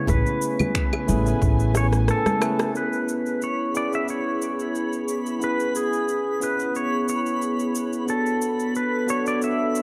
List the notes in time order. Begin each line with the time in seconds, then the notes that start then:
Already playing: C#3 B3 E4 G#4 B4 C#5
0.06 A1 A3 B3 C#4 E4 G#4 B4 G#5, kick, high bongo, low conga, cabasa
0.10 B4
0.27 cabasa
0.42 cabasa
0.59 high bongo, high conga, low conga, cabasa, claves
0.75 finger snap, kick, cabasa
0.93 high bongo, claves
1.07 A1 A3 C#4 E4 G#4 B4, high conga, cabasa
1.24 A3 C#4 E4 G#5, cabasa
1.28 B4
1.42 A1, kick, high bongo, cabasa
1.60 cabasa
1.75 C#5, cross-stick, high bongo, cabasa
1.93 cross-stick, cabasa
2.08 A4, cross-stick, cabasa
2.26 cross-stick, high bongo, high conga, cabasa
2.41 A3 C#4 E4 G#4 B4, cross-stick, cabasa, claves
2.59 cross-stick, high bongo, cabasa
2.73 B3 C#4 E4 G#4 B4 B5, cabasa
2.78 B4
2.93 cabasa
3.09 cabasa
3.26 cabasa
3.42 C#5, cabasa
3.74 B3 C#4 E4 G#4 B4 D5, cabasa
3.90 B3 C#4 E4 G#4, cabasa
3.95 B4 E5
4.08 C#5, cabasa
4.42 cabasa
4.60 cabasa
4.75 cabasa
4.93 cabasa
5.08 cabasa
5.26 cabasa
5.39 B3 C#4 E4 G#4, cabasa
5.44 B4
5.60 cabasa
5.75 G#4, cabasa
5.93 cabasa
6.08 cabasa
6.40 B3 C#4 E4 G#4 B4, cabasa
6.57 B3 C#4 E4 G#4, cabasa
6.61 B4
6.75 C#5, cabasa
7.08 C#5, cabasa
7.26 cabasa
7.42 cabasa
7.59 cabasa
7.75 cabasa
7.93 cabasa
8.06 B3 D4 F#4 A4, cabasa
8.10 C#5
8.26 cabasa
8.42 cabasa
8.60 cabasa
8.75 B4, cabasa
9.07 B3 D4 F#4 A4 C#5, cabasa
9.24 B3 D4 F#4 A4 D5, cabasa
9.28 C#5
9.42 E5, cabasa
9.75 cabasa